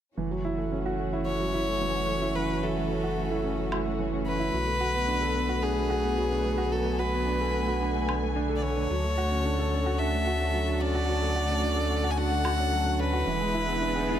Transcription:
0.17 F#1 E3 A3 C#4 F#4
0.31 F#3
0.45 E4
0.58 A3
0.72 C#4
0.86 F#4
0.99 A3
1.13 E4
1.26 C#4 C#5
1.40 F#3
1.54 E4
1.68 A3
1.81 E3
1.95 C#4
2.08 A3
2.22 E4
2.36 E3 B4
2.49 F#3
2.63 E4 A4
2.77 A3
2.90 C#4
3.04 F#4
3.17 A3
3.31 E4
3.44 C#4
3.58 F#3
3.72 E4, low woodblock
3.86 A3
3.99 E3
4.12 C#4
4.26 A3 B4
4.40 E4
4.53 B1 D3 F#3 B3
4.67 A3
4.80 F#4
4.94 B3
5.08 D4
5.21 A4
5.35 B3
5.49 F#4
5.63 D4 G#4
5.76 A3
5.90 F#4
6.03 B3
6.17 F#3
6.31 D4
6.45 B3
6.58 F#4
6.71 F#3 A4 G#5
6.85 A3
6.99 F#4 B4
7.13 B3
7.27 D4
7.41 A4
7.54 B3
7.68 F#4
7.81 D4
7.95 A3
8.09 D4, low woodblock
8.23 A3
8.36 D4
8.49 A4
8.56 D5
8.63 D4 C#5
8.77 D4
8.90 D2 F#3 F#4 A4
9.04 A3
9.18 F#4
9.31 C#4
9.45 D4
9.59 A4
9.72 C#4
9.86 F#4
9.99 D4 E5
10.13 A3
10.27 F#4
10.41 C#4
10.54 F#3
10.68 D4
10.81 C#4 D5
10.95 F#4
11.09 F#3
11.22 A3
11.36 F#4
11.49 C#4
11.63 D4
11.77 A4
11.90 C#4
12.04 F#4
12.11 G#5
12.18 D4 F#5
12.31 A3
12.45 F#4, low woodblock
12.59 C#4
12.72 F#3
12.86 D4
13.00 C#4 B4
13.13 F#4
13.27 E1 E3 G#3 B3 E4, riser
13.41 G#3
13.54 E4
13.68 B3
13.81 D4
13.95 G#4
14.09 B3

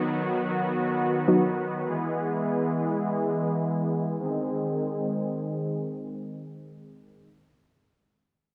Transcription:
Already playing: D#3 F#3 B3 D#4 F#4
1.28 F#3 B3 D#4 F#4
1.86 E3 G#3 G#4
4.19 D#3 G#3 C4 G#4

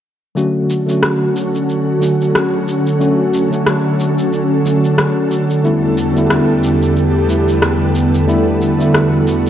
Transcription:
0.35 D3 F#3 A3 C#4 F#4 A4, shaker
0.70 shaker
0.86 D3 F#3 A3 C#4, shaker
0.91 F#4
1.03 cross-stick, shaker
1.36 shaker
1.55 shaker
1.69 shaker
1.99 D3 F#3 A3 C#4, shaker
2.03 F#4
2.21 shaker
2.35 cross-stick, shaker
2.68 shaker
2.87 shaker
2.99 D3 F#3 A3 C#4 F#4, shaker
3.34 shaker
3.50 D3 F#3 A3 C#4, shaker
3.54 F#4
3.66 cross-stick, shaker
4.00 shaker
4.18 shaker
4.33 shaker
4.63 D3 F#3 A3 C#4, shaker
4.67 F#4
4.84 shaker
4.98 cross-stick, shaker
5.31 shaker
5.50 shaker
5.63 E2 D3 G3 A3 B3 E4 G4, shaker
5.98 shaker
6.14 D3 G3 A3 B3, shaker
6.18 E4
6.30 cross-stick, shaker
6.64 shaker
6.82 shaker
6.97 shaker
7.27 D3 G3 A3 B3, shaker
7.31 E4
7.49 shaker
7.62 cross-stick, shaker
7.96 shaker
8.15 shaker
8.27 D3 G3 A3 B3 E4 F#4, shaker
8.62 shaker
8.78 D3 G3 A3 B3 E4, shaker
8.94 cross-stick, shaker
9.28 shaker
9.46 shaker

